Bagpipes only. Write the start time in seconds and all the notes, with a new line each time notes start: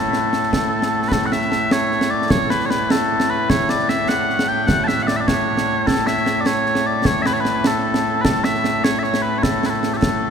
Already playing: A2 A3 A4
1.08 B4
1.12 A4
1.26 F#5
1.32 E5
1.72 C#5
2.10 D5
2.30 C#5
2.50 B4
2.66 C#5
2.71 B4
2.91 A4
3.30 B4
3.50 C#5
3.69 D5
3.89 E5
4.09 F#5
4.48 G5
4.67 F#5
4.84 E5 A5
5.03 F#5
5.07 D5
5.16 E5
5.20 D5
5.27 C#5
5.87 A4
6.07 E5
6.41 D5
6.46 C#5
6.86 D5
7.06 C#5
7.22 E5
7.26 B4
7.33 C#5
7.41 B4
7.67 A4
8.21 A4 B4
8.44 E5
8.84 C#5
8.99 E5
9.03 C#5
9.22 B4
9.39 C#5
9.43 A4
9.66 A4 B4
9.94 G4 A4